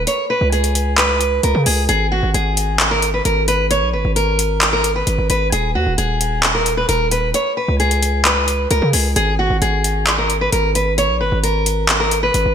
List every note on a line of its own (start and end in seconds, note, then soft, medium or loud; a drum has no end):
0.07 0.24 C#5 loud
0.07 closed hi-hat medium
0.30 0.47 B4 medium
0.41 1.39 C#2 loud
0.52 0.95 G#4 medium
0.52 closed hi-hat soft
0.64 closed hi-hat medium
0.75 closed hi-hat medium
0.98 1.41 B4 medium
0.98 clap loud
0.98 closed hi-hat medium
1.21 closed hi-hat medium
1.43 1.54 C#2 loud
1.43 1.61 A#4 medium
1.43 closed hi-hat medium
1.55 1.66 C#3 loud
1.66 1.88 C#2 loud
1.66 1.83 G#4 medium
1.66 open hi-hat medium
1.89 2.22 G#1 loud
1.89 2.06 G#4 loud
1.89 closed hi-hat medium
2.12 2.29 F#4 medium
2.23 2.34 G#1 loud
2.34 3.22 G#1 loud
2.34 2.88 G#4 medium
2.34 closed hi-hat medium
2.57 closed hi-hat medium
2.80 clap loud
2.80 closed hi-hat medium
2.91 3.08 A#4 medium
3.02 closed hi-hat medium
3.14 3.22 B4 medium
3.25 3.84 G#1 loud
3.25 3.42 A#4 medium
3.25 closed hi-hat medium
3.48 3.65 B4 medium
3.48 closed hi-hat medium
3.71 3.88 C#5 loud
3.71 closed hi-hat medium
3.82 3.95 A#1 loud
3.93 4.04 G#1 loud
3.93 4.11 B4 medium
4.05 5.03 G#1 loud
4.16 4.69 A#4 medium
4.16 closed hi-hat medium
4.39 closed hi-hat medium
4.62 clap loud
4.62 closed hi-hat medium
4.73 4.90 A#4 medium
4.84 closed hi-hat medium
4.96 5.28 B4 medium
5.07 5.18 G#1 loud
5.07 closed hi-hat medium
5.18 5.29 G#1 loud
5.30 5.52 G#1 loud
5.30 5.47 B4 loud
5.30 closed hi-hat medium
5.52 5.77 D#1 loud
5.52 5.70 G#4 loud
5.52 closed hi-hat medium
5.75 5.86 D#2 loud
5.75 5.92 F#4 medium
5.87 5.97 D#1 loud
5.98 6.85 D#1 loud
5.98 6.51 G#4 medium
5.98 closed hi-hat medium
6.21 closed hi-hat medium
6.43 clap loud
6.43 closed hi-hat medium
6.55 6.72 A#4 medium
6.66 closed hi-hat medium
6.77 6.86 B4 medium
6.89 7.33 D#1 loud
6.89 7.06 A#4 medium
6.89 closed hi-hat medium
7.11 7.29 B4 medium
7.11 closed hi-hat medium
7.34 7.51 C#5 loud
7.34 closed hi-hat medium
7.57 7.74 B4 medium
7.68 8.67 C#2 loud
7.80 8.22 G#4 medium
7.80 closed hi-hat soft
7.91 closed hi-hat medium
8.03 closed hi-hat medium
8.25 8.68 B4 medium
8.25 clap loud
8.25 closed hi-hat medium
8.48 closed hi-hat medium
8.71 8.82 C#2 loud
8.71 8.88 A#4 medium
8.71 closed hi-hat medium
8.82 8.93 C#3 loud
8.93 9.15 C#2 loud
8.93 9.11 G#4 medium
8.93 open hi-hat medium
9.16 9.49 G#1 loud
9.16 9.33 G#4 loud
9.16 closed hi-hat medium
9.39 9.56 F#4 medium
9.50 9.61 G#1 loud
9.62 10.49 G#1 loud
9.62 10.15 G#4 medium
9.62 closed hi-hat medium
9.84 closed hi-hat medium
10.07 clap loud
10.07 closed hi-hat medium
10.18 10.36 A#4 medium
10.30 closed hi-hat medium
10.41 10.50 B4 medium
10.52 11.11 G#1 loud
10.52 10.70 A#4 medium
10.52 closed hi-hat medium
10.75 10.92 B4 medium
10.75 closed hi-hat medium
10.98 11.15 C#5 loud
10.98 closed hi-hat medium
11.09 11.22 A#1 loud
11.21 11.31 G#1 loud
11.21 11.38 B4 medium
11.32 12.30 G#1 loud
11.43 11.97 A#4 medium
11.43 closed hi-hat medium
11.66 closed hi-hat medium
11.89 clap loud
11.89 closed hi-hat medium
12.00 12.17 A#4 medium
12.11 closed hi-hat medium
12.23 12.55 B4 medium
12.34 12.45 G#1 loud
12.34 closed hi-hat medium
12.46 12.55 G#1 loud